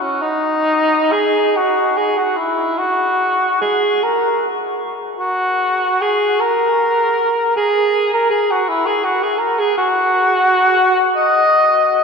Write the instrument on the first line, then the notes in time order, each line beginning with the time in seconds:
cor anglais
0.01 C#4
0.22 D#4
1.12 G#4
1.56 F#4
1.97 G#4
2.18 F#4
2.37 E4
2.78 F#4
3.61 G#4
4.03 A#4
5.19 F#4
6.01 G#4
6.40 A#4
7.56 G#4
8.14 A#4
8.30 G#4
8.51 F#4
8.68 E4
8.86 G#4
9.04 F#4
9.23 G#4
9.38 A#4
9.59 G#4
9.78 F#4
11.15 D#5